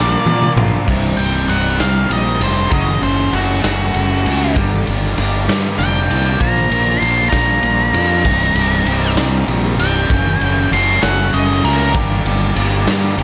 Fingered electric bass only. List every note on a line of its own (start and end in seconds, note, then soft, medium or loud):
0.00 0.15 A#1 medium
0.25 0.45 A#2 medium
0.56 0.76 A#1 medium
0.88 1.17 C1 medium
1.17 1.47 C1 medium
1.48 1.78 C1 medium
1.80 2.09 C2 medium
2.10 2.39 A#1 medium
2.40 2.70 F1 medium
2.72 3.01 F#1 medium
3.02 3.32 F#1 medium
3.33 3.62 F#1 medium
3.65 3.94 F#1 medium
3.95 4.24 F#1 medium
4.26 4.55 C#2 medium
4.56 4.86 G1 medium
4.88 5.17 G1 medium
5.17 5.47 G1 medium
5.48 5.78 G2 medium
5.78 6.08 F1 medium
6.10 6.39 C2 medium
6.41 6.70 A#1 medium
6.70 7.00 A#1 medium
7.01 7.31 A#1 medium
7.32 7.62 A#1 medium
7.63 7.93 A#1 medium
7.93 8.23 F2 medium
8.25 8.54 C1 medium
8.55 8.85 C1 medium
8.85 9.15 C1 medium
9.16 9.46 C2 loud
9.48 9.77 A#1 medium
9.78 10.08 C1 medium
10.11 10.40 F#1 medium
10.40 10.70 F#1 medium
10.71 11.01 F#1 medium
11.03 11.32 F#1 medium
11.34 11.63 F#1 medium
11.63 11.93 C#2 medium
11.95 12.24 G1 loud
12.25 12.54 G1 loud
12.56 12.85 G1 medium
12.87 13.16 G2 loud
13.18 13.23 F1 medium